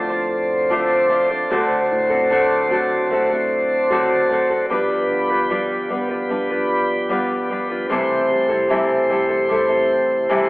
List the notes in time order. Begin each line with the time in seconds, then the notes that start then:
Already playing: D2 A2 D3 F3 A3 C4 D4 F4 A4 C5
0.10 D4 F4 C5
0.70 D3 F3 A3 D4 F4 C5
1.09 A3 D4 F4 C5
1.30 D4 F4 C5
1.50 D2 D3 F#3 A3 C4 F#4 A4
1.91 A2
2.10 C4 F#4 A4
2.30 D3 A3 C4 F#4 A4
2.70 F#3 A3 C4 F#4 A4
3.10 A3 C4 F#4 A4
3.30 C4 F#4 A4
3.90 D3 F#3 A3 C4 F#4 A4
4.30 A3 C4 F#4 A4
4.50 C4 F#4 A4
4.70 G2 F3 G3 B3 D4 F4 G4 B4
5.10 D3
5.30 D4 F4 B4
5.50 F3 G3 D4 F4 B4
5.89 G3 B3 D4 F4 B4
6.09 D4 F4 B4
6.29 G3 D4 F4 B4
6.50 D4 F4 B4
7.09 G3 B3 D4 F4 B4
7.49 G3 D4 F4 B4
7.70 D4 F4 B4
7.89 C3 E3 G3 A3 C4 E4 A4 C5
8.31 G3
8.49 G3 C4 E4 A4
8.69 C3 E3 G3 C4 E4 A4
9.09 G3 C4 E4 G4 A4
9.29 G3 C4 E4 A4
9.49 G3 C4 E4 A4
9.69 G3 C4 E4 A4
10.29 C3 E3 G3 C4 E4 G4 A4